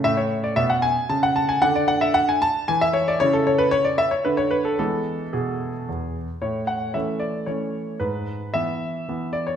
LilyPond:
<<
  \new Staff \with { instrumentName = "Grand piano" } { \time 3/4 \key a \major \tempo 4 = 113 << { e''16 cis''8 d''16 e''16 fis''16 gis''8 a''16 fis''16 a''16 gis''16 | fis''16 d''16 fis''16 e''16 fis''16 gis''16 a''8 gis''16 e''16 cis''16 d''16 | cis''16 a'16 cis''16 b'16 cis''16 d''16 e''16 cis''16 b'16 cis''16 b'16 a'16 | a'4 gis'4. r8 |
cis''8 fis''8 e''8 d''8 cis''4 | b'4 e''4. d''16 cis''16 | } \\ { cis'2 r4 | d'2 r4 | e'2 r4 | r2. |
r2. | r2. | } >> }
  \new Staff \with { instrumentName = "Grand piano" } { \clef bass \time 3/4 \key a \major a,4 b,4 cis4 | d2 e4 | cis2 d4 | <e gis b>4 b,4 e,4 |
a,4 <e a cis'>4 <e a cis'>4 | gis,4 <e b>4 <e b>4 | }
>>